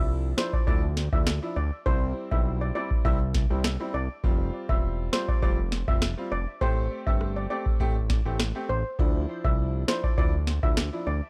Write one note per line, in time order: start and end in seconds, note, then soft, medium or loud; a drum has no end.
0.00 0.34 C2 medium
0.00 0.34 F3 medium
0.00 0.34 D4 medium
0.00 0.34 E4 medium
0.37 0.65 F3 medium
0.37 0.65 D4 medium
0.37 0.65 E4 medium
0.37 0.51 C5 medium
0.37 cross-stick medium
0.37 snare loud
0.53 0.65 D5 medium
0.53 kick medium
0.67 1.09 D2 loud
0.67 0.80 F3 medium
0.67 0.81 D4 medium
0.67 0.81 E4 loud
0.67 0.80 D5 medium
0.67 kick loud
0.97 snare medium
1.12 1.40 D2 loud
1.12 1.24 F3 medium
1.12 1.25 D4 medium
1.12 1.25 E4 medium
1.12 1.24 E5 medium
1.12 kick medium
1.27 cross-stick medium
1.27 snare loud
1.42 1.54 F3 medium
1.42 1.54 D4 medium
1.42 1.54 E4 medium
1.56 1.71 D2 loud
1.56 1.69 D5 medium
1.86 2.13 C2 loud
1.86 2.28 G3 medium
1.86 2.28 C4 medium
1.86 2.28 E4 loud
1.86 1.99 C5 loud
1.86 kick loud
2.31 2.72 B1 medium
2.31 2.72 G3 medium
2.31 2.72 C4 medium
2.31 2.72 E4 medium
2.31 2.43 E5 medium
2.31 kick medium
2.61 2.73 D5 medium
2.75 3.03 G3 medium
2.75 3.03 C4 medium
2.75 3.03 E4 medium
2.75 2.88 D5 medium
2.91 kick medium
3.05 3.47 C2 loud
3.05 3.18 G3 medium
3.05 3.18 C4 medium
3.05 3.18 E4 loud
3.05 3.48 E5 medium
3.05 kick loud
3.34 kick loud
3.34 snare medium
3.50 3.78 C2 loud
3.50 3.62 G3 medium
3.50 3.62 C4 medium
3.50 3.62 E4 medium
3.64 cross-stick medium
3.64 snare loud
3.80 3.92 G3 medium
3.80 3.92 C4 medium
3.80 3.92 E4 medium
3.94 4.08 C2 medium
3.94 4.07 D5 medium
4.23 4.51 F1 loud
4.23 4.65 G3 medium
4.23 4.65 C4 medium
4.23 4.66 F4 loud
4.23 kick loud
4.69 5.09 E1 medium
4.69 5.09 G3 medium
4.69 5.09 C4 medium
4.69 5.10 F4 medium
4.69 4.81 E5 medium
4.69 kick medium
5.13 5.40 G3 medium
5.13 5.40 C4 medium
5.13 5.41 F4 medium
5.13 5.26 C5 medium
5.13 cross-stick medium
5.13 snare loud
5.28 5.40 D5 medium
5.28 kick medium
5.42 5.84 F1 loud
5.42 5.56 G3 medium
5.42 5.56 C4 medium
5.42 5.56 F4 loud
5.42 5.56 D5 medium
5.42 kick loud
5.72 snare medium
5.88 6.15 F1 medium
5.88 6.00 G3 medium
5.88 6.00 C4 medium
5.88 6.00 F4 medium
5.88 6.00 E5 medium
5.88 kick medium
6.02 cross-stick medium
6.02 snare loud
6.17 6.29 G3 medium
6.17 6.29 C4 medium
6.17 6.30 F4 medium
6.32 6.46 F1 medium
6.32 6.45 D5 medium
6.61 6.89 A1 loud
6.61 7.03 A3 medium
6.61 7.03 C4 medium
6.61 7.03 G4 loud
6.61 6.74 C5 loud
6.61 kick loud
7.07 7.47 G1 medium
7.07 7.47 A3 medium
7.07 7.47 C4 medium
7.07 7.47 G4 medium
7.07 7.18 E5 medium
7.07 kick medium
7.21 cross-stick medium
7.36 7.48 D5 medium
7.50 7.78 A3 medium
7.50 7.78 C4 medium
7.50 7.78 G4 medium
7.50 7.63 D5 medium
7.66 kick medium
7.80 8.22 A1 loud
7.80 7.93 A3 medium
7.80 7.93 C4 medium
7.80 7.94 G4 loud
7.80 kick loud
8.10 kick medium
8.10 snare medium
8.25 8.53 A1 loud
8.25 8.37 A3 medium
8.25 8.37 C4 medium
8.25 8.38 G4 medium
8.40 cross-stick medium
8.40 snare loud
8.55 8.67 A3 medium
8.55 8.67 C4 medium
8.55 8.67 G4 medium
8.69 8.84 A1 medium
8.69 8.82 C5 medium
8.99 9.26 D2 loud
8.99 9.41 F3 medium
8.99 9.41 D4 medium
8.99 9.41 E4 loud
8.99 kick loud
9.44 9.85 C2 medium
9.44 9.85 F3 medium
9.44 9.85 D4 medium
9.44 9.85 E4 medium
9.44 9.56 E5 medium
9.44 kick medium
9.88 10.15 F3 medium
9.88 10.16 D4 medium
9.88 10.16 E4 medium
9.88 10.01 C5 medium
9.88 cross-stick medium
9.88 snare loud
10.04 10.15 D5 medium
10.04 kick medium
10.17 10.59 D2 loud
10.17 10.31 F3 medium
10.17 10.31 D4 medium
10.17 10.31 E4 loud
10.17 10.31 D5 medium
10.17 kick loud
10.47 snare medium
10.63 10.90 D2 medium
10.63 10.75 F3 medium
10.63 10.75 D4 medium
10.63 10.75 E4 medium
10.63 10.75 E5 medium
10.63 kick loud
10.77 cross-stick medium
10.77 snare loud
10.93 11.05 F3 medium
10.93 11.05 D4 medium
10.93 11.05 E4 medium
11.07 11.21 D2 loud
11.07 11.20 D5 medium